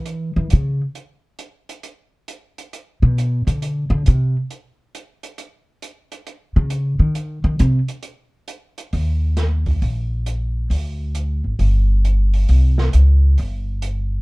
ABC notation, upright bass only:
X:1
M:4/4
L:1/8
Q:"Swing" 1/4=135
K:Cm
V:1 name="Upright bass" clef=bass
=E, _F, _D, z4 z | z4 z =B,,2 D,- | D, D, C, z4 z | z4 z _D,2 E,- |
E, E, C, z4 z | E,,4 B,,,4 | D,,3 A,,, G,,,4 | C,,2 _D,,2 G,,,4 |]